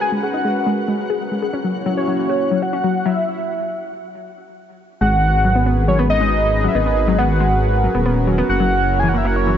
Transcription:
Already playing: C#4 F#4 G#4 A#4 B4 F#5
0.01 G#5
0.12 G#3
0.23 G#4 F#5
0.34 D#4
0.45 G#3
0.66 G#3
0.88 G#3
1.10 G#4
1.31 G#3
1.42 G#4
1.53 A#3 C#4 E4 F#4 C#5
1.64 F#3
1.86 F#3
1.97 C#5
2.08 F#3
2.19 C#5
2.29 F#4
2.51 F#3
2.62 F#4 F#5
2.73 C#4
2.84 F#3
3.05 F#3 E5
5.01 G#1 G#3 C#4 F#4 G#4 A#4 B4 F#5
5.45 F#3
5.55 B3
5.66 B3
5.88 F#3 C#5
5.99 B3
6.10 D#5
6.21 G#3
6.64 F#3 E5
6.75 G#1 B3 D#5
6.86 B3
7.08 F#3
7.18 B3 F#5
7.40 G#3
7.84 F#3
7.95 D#1 B3
8.06 B3
8.27 F#3
8.38 B3
8.49 F#1 E4 C#5 F#5
8.60 F#3
8.99 E3 G#5
9.09 F#5
9.14 A#3 E5
9.25 A#3 F#5
9.36 C#5
9.47 E3

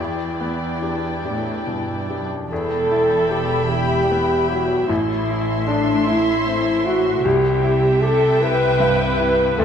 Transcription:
Already playing: E4
0.00 E2 E3 E4 D5 G5
0.41 B3
0.82 D4 G4
1.25 A2 D4 G4
1.67 G2 B2
2.09 F#2 D4 G4
2.50 E1 E2 A4 E5 G5 B5
2.92 E4
3.31 G4
3.70 E4 G4
4.11 B3
4.48 F#3 E4 F#4
4.88 A1 A2 E4 E5 C6
5.31 E4
5.67 D4 A4
6.06 E4
6.47 C4
6.85 E4 F#4
7.24 C2 C3 G4 E5 G5
7.64 E4
8.03 G4 A4
8.42 E4 B4
8.80 G2
9.20 E4
9.59 D2 A4 E5 F#5

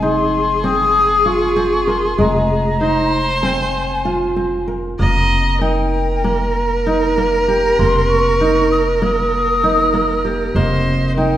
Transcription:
Already playing: F1 G#3 C4 G#4 A#4
0.02 D#4 C6
0.64 C4 D#6
1.26 F4 C#6
1.56 C4
1.87 A#4 C6
2.18 F1 G#3 A#5
2.80 D#4 C5
3.35 A#5
3.43 C4 G#5
4.05 F4
4.36 C4
4.68 A#4
4.99 F1 A#3 D#5 A#5
5.61 D#4 A#4 G5
6.24 A#3 A#5
6.87 D#4 A#5
7.18 A#3
7.48 G4
7.79 F1 A#3 C6
8.10 C#6
8.41 D#4
8.72 D#6
9.02 A#3 D#6
9.64 D#4
9.94 A#3
10.25 G4
10.55 F1 A#3 C5 D#5
11.16 D#4 A#4 G5

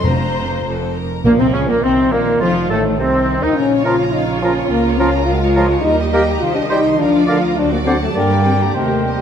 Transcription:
0.04 F1 F2 F4 C5 A#5
0.64 F1 F2 A4
0.96 A#4
1.24 A#1 A#2 F3 A#3 A#4
1.39 C2 C3 C4
1.53 C#2 C#3 C#4
1.68 A#1 A#2 A#3 A#4
1.82 C2 C3 D#3 C4
2.12 A#1 A#2 A#3 A#4
2.41 F1 F2 F3 F4
2.70 A1 A2 A3 A4
2.99 C2 C3 C4
3.42 D#2 D#3 D#4
3.55 A#1 C#3 C#4 F4 A#4 C#5
3.74 C#5
3.85 F3 F4 A#4 C#5 F5
4.01 A#5
4.12 D#4 F5
4.30 C#5
4.41 F3 C#4 F4 A#4 C#5
4.58 C#5
4.69 C#2 A#3 A#4
4.86 C#5
4.97 F3 C#4 F4 A#4 C#5 F5
5.16 A#5
5.25 G#3 F4
5.30 F#4 F5
5.41 F4 C#5
5.56 F3 F4 A#4 C#5
5.72 C#5
5.82 D#2 G3 D#4 G4 D#5
5.86 A#4
6.00 D#5
6.12 A#3 G4 A#4 D#5 G5
6.30 A#5
6.40 C2 D#3 F4 C5
6.55 D4 D#5
6.69 G3 D#4 G4 C5 D#5 G5
6.86 C6
6.97 D2 F3 D4 F4 A#4 F5
7.15 D5
7.27 D3 F4 A#4 D5 F5
7.44 A#5
7.57 F#3 D4 F#4 C5 D5
7.73 A#3 D5
7.85 D3 C4 C5 D5 F#5
8.02 A3 A5
8.14 G2 D3 G3 A#3 G4 A#4 D5 G5
8.30 D5
8.46 C4 G5
8.61 A#3 A#5
8.74 D#2 C3 D#3 A3 A#4 C5 G5
8.90 C5
9.05 G3 D#5

